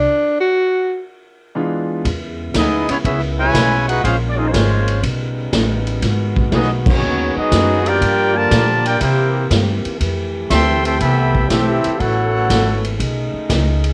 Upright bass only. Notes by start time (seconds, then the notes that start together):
2.05 E2
2.55 D2
2.89 muted upright bass stroke
3.05 C#2
3.54 B1
4.04 A#1
4.54 G#1
5.03 B1
5.53 A1
6.02 G#1
6.52 B1
7.02 D#2
7.36 muted upright bass stroke
7.52 F#2
8.01 G2
8.51 A#2
9.01 C3
9.51 G2
9.85 muted upright bass stroke
10.01 F2
10.51 D2
11.01 C2
11.50 B1
11.85 muted upright bass stroke
12.00 A1
12.50 G#1
13.00 B1
13.34 muted upright bass stroke
13.50 C#2